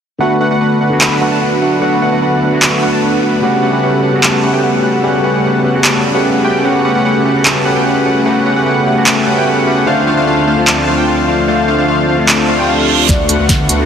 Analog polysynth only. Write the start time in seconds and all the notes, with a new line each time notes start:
0.20 A3 D4 F#4 B4 F#5
0.41 A3 D4 F#4 B4 F#5
0.51 A3 D4 F#4 B4 F#5
0.61 A3 D4 F#4 B4 F#5
0.81 A3 D4 F#4 B4 F#5
1.01 A3 D4 F#4 B4 B5
1.21 A3 D4 F#4 B4 F#5
1.31 A3 D4 F#4 B4 A5
1.41 A3 D4 F#4 B4 F#5
1.62 A3 D4 F#4 B4 F#5
1.82 A3 D4 F#4 B4 F#5
2.02 A3 D4 F#4 B4 F#5
2.12 A3 D4 F#4 B4 F#5
2.22 A3 D4 F#4 B4 F#5
2.42 A3 D4 F#4 B4 F#5
2.62 A3 D4 F#4 B4 B5
2.82 A3 D4 F#4 B4 F#5
2.93 A3 D4 F#4 B4 A5
3.03 A3 D4 F#4 B4 F#5
3.23 A3 D4 F#4 B4 F#5
3.43 A3 C#4 G4 B4 F#5
3.63 A3 C#4 G4 B4 F#5
3.73 A3 C#4 G4 B4 F#5
3.83 A3 C#4 G4 B4 F#5
4.03 A3 C#4 G4 B4 F#5
4.23 A3 C#4 G4 B4 A5
4.43 A3 C#4 G4 B4 F#5
4.53 A3 C#4 G4 B4 G5
4.63 A3 C#4 G4 B4 F#5
4.84 A3 C#4 G4 B4 F#5
5.04 A3 C#4 G4 B4 F#5
5.24 A3 C#4 G4 B4 F#5
5.34 A3 C#4 G4 B4 F#5
5.44 A3 C#4 G4 B4 F#5
5.64 A3 C#4 G4 B4 F#5
5.84 A3 C#4 G4 B4 A5
6.14 A3 C#4 G4 B4 F#5
6.24 A3 C#4 G4 B4 F#5
6.44 A3 C#4 G4 B4 G5
6.65 A3 C#4 G4 B4 F#5
6.85 A3 C#4 G4 B4 F#5
6.95 A3 C#4 G4 B4 F#5
7.05 A3 C#4 G4 B4 F#5
7.25 A3 C#4 G4 B4 F#5
7.45 A3 C#4 G4 B4 A5
7.65 A3 C#4 G4 B4 F#5
7.76 A3 C#4 G4 B4 G5
7.85 A3 C#4 G4 B4 F#5
8.06 A3 C#4 G4 B4 F#5
8.26 A3 C#4 G4 B4 F#5
8.46 A3 C#4 G4 B4 F#5
8.56 A3 C#4 G4 B4 F#5
8.66 A3 C#4 G4 B4 F#5
8.86 A3 C#4 G4 B4 F#5
9.06 A3 C#4 B4 A5
9.26 A3 C#4 G4 B4 F#5
9.37 A3 C#4 G4 B4 G5
9.47 A3 C#4 G4 B4 F#5
9.67 A3 C#4 G4 B4 F#5
9.87 A3 D4 F4 C5 F5
10.07 A3 D4 F4 C5 F5
10.17 A3 D4 F4 C5 F5
10.27 A3 D4 F4 C5 F5
10.47 A3 D4 F4 C5 F5
10.68 A3 D4 F4 C5 A5
10.88 A3 D4 F4 C5 F5
10.98 A3 D4 F4 C5 G5
11.08 A3 D4 F4 C5 F5
11.28 A3 D4 F4 C5 F5
11.48 A3 D4 F4 C5 F5
11.68 A3 D4 F4 C5 F5
11.78 A3 D4 F4 C5 F5
11.88 A3 D4 F4 C5 F5
12.08 A3 D4 F4 C5 F5
12.29 A3 D4 C5
12.49 A3 D4 F4 C5 F5
12.59 A3 D4 F4 C5 G5
12.69 A3 D4 F4 C5 F5
12.89 A3 D4 F4 C5 F5
13.09 A3 D4 F#4 B4 F#5
13.29 A3 D4 F#4 B4 F#5
13.39 A3 D4 F#4 B4 F#5
13.49 A3 D4 F#4 F#5
13.69 A3 D4 F#4 B4 F#5